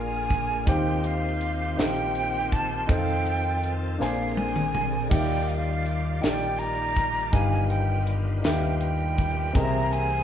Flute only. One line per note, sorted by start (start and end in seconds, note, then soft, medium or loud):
0.00 0.69 G#5 medium
0.67 1.06 G5 medium
1.05 1.82 F5 medium
1.80 2.54 G5 medium
2.53 2.90 A5 medium
2.89 3.73 G5 medium
3.99 4.34 F5 medium
4.37 5.07 G#5 medium
5.10 5.50 G5 medium
5.48 6.23 F5 medium
6.22 6.60 G5 medium
6.59 7.34 A#5 loud
7.33 7.69 G#5 medium
7.70 8.14 G5 medium
8.44 8.78 G5 medium
8.80 9.57 G5 medium
9.55 9.94 A#5 medium
9.93 10.23 G#5 medium